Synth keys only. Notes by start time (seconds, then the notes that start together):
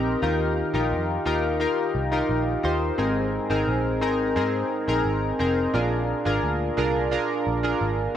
Already playing: C4 D#4 G4 A#4 D#5 G5 A#5
0.22 D#3 D#4 F4 G4 A#4
0.74 D#4 F4 G4 A#4
1.25 D#4 F4 G4 A#4
1.60 D#4 F4 G4 A#4
2.12 D#4 F4 G4 A#4
2.63 D#4 F4 G4 C5
2.98 G#2 C4 D#4 G#4 A#4
3.50 C4 D#4 G#4 A#4
4.01 C4 D#4 G#4 A#4
4.36 C4 D#4 G#4 A#4
4.88 C4 D#4 G#4 A#4
5.39 C4 D#4 G#4 A#4
5.74 A#2 D4 F4 G#4 A#4
6.25 D4 F4 G#4 A#4
6.77 D4 F4 G#4 A#4
7.11 D4 F4 G#4 A#4
7.63 D4 F4 G#4 A#4